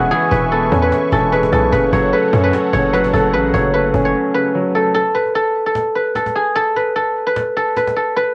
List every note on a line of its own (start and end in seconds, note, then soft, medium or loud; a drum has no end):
0.00 0.11 E1 loud
0.00 0.12 E3 loud
0.00 1.33 G#3 medium
0.00 0.52 B3 medium
0.00 0.12 C#4 loud
0.00 2.35 F#4 medium
0.00 0.11 G#4 medium
0.00 0.31 B4 medium
0.00 1.69 B4 medium
0.00 1.69 E5 medium
0.00 1.69 G#5 medium
0.00 4.91 C#6 medium
0.11 1.11 E3 loud
0.11 0.58 G#4 loud
0.11 cajon slap soft
0.31 0.70 E1 loud
0.31 0.82 B4 medium
0.31 cajon bass medium
0.52 1.51 B3 loud
0.52 1.12 A4 medium
0.52 cajon slap soft
0.72 0.91 E2 loud
0.72 1.72 C#4 medium
0.72 cajon bass loud
0.82 1.32 B4 medium
0.92 cajon slap loud
1.12 1.51 E1 loud
1.12 1.73 E3 medium
1.12 1.52 A4 medium
1.12 cajon bass loud
1.32 1.73 G#3 medium
1.32 1.72 B4 medium
1.32 cajon slap medium
1.43 cajon slap medium
1.52 1.72 B1 loud
1.52 1.72 B3 medium
1.52 3.13 A4 medium
1.52 cajon bass loud
1.72 1.92 F#1 loud
1.72 2.72 C#3 loud
1.72 4.91 A4 medium
1.72 2.12 B4 loud
1.72 4.91 C#5 medium
1.72 4.91 F#5 medium
1.72 cajon bass loud
1.93 2.12 F#1 loud
1.93 2.91 F#3 medium
1.93 2.73 C#5 medium
1.93 cajon bass loud
2.03 cajon slap soft
2.13 3.12 A3 medium
2.13 2.43 B4 medium
2.13 cajon slap soft
2.33 2.52 F#2 loud
2.33 3.34 C#4 medium
2.33 cajon bass medium
2.44 2.93 B4 medium
2.53 cajon slap loud
2.73 3.12 F#1 loud
2.73 3.33 C#3 medium
2.73 3.53 C#5 medium
2.73 cajon bass loud
2.93 3.52 F#3 medium
2.93 3.33 B4 medium
2.93 cajon slap medium
3.04 cajon slap medium
3.13 3.35 F#1 loud
3.13 3.72 A3 medium
3.13 4.74 A4 medium
3.13 cajon bass medium
3.33 3.53 A1 loud
3.33 4.33 C#3 medium
3.33 3.73 B4 loud
3.33 cajon slap soft
3.54 3.92 F#1 loud
3.54 4.53 F#3 medium
3.54 4.05 C#5 medium
3.54 cajon bass medium
3.74 4.74 A3 medium
3.74 4.34 B4 medium
3.74 cajon slap soft
3.94 4.14 F#1 loud
3.94 4.95 C#4 medium
3.94 cajon bass medium
4.05 5.96 C#5 medium
4.34 4.95 C#3 medium
4.34 5.14 B4 medium
4.55 4.95 F#3 medium
4.75 4.95 A3 medium
4.75 4.94 A4 medium
4.94 5.35 A4 loud
4.94 cajon slap soft
5.15 5.95 B4 medium
5.15 cajon slap soft
5.26 cajon slap soft
5.35 5.66 A4 loud
5.35 cajon slap soft
5.66 6.15 A4 medium
5.75 cajon slap loud
5.96 6.76 B4 medium
6.15 6.42 A4 medium
6.15 cajon slap medium
6.26 cajon slap medium
6.36 6.62 G#4 medium
6.56 6.95 A4 loud
6.56 cajon slap soft
6.76 7.26 B4 medium
6.76 cajon slap soft
6.96 7.56 A4 medium
6.96 cajon slap soft
7.27 7.76 B4 medium
7.36 cajon slap loud
7.56 7.96 A4 medium
7.56 cajon slap soft
7.76 8.16 B4 medium
7.76 cajon slap medium
7.87 cajon slap medium
7.96 8.34 A4 medium
8.16 8.34 B4 loud
8.16 cajon slap soft